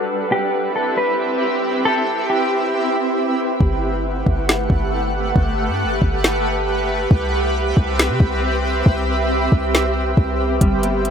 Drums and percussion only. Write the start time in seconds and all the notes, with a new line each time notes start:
3.60 kick
4.26 kick
4.49 snare
4.70 kick
5.36 kick
6.02 kick
6.24 snare
7.11 kick
7.77 kick
7.99 snare
8.20 kick
8.86 kick
9.52 kick
9.75 snare
10.17 kick
10.61 kick, closed hi-hat
10.83 closed hi-hat
11.05 closed hi-hat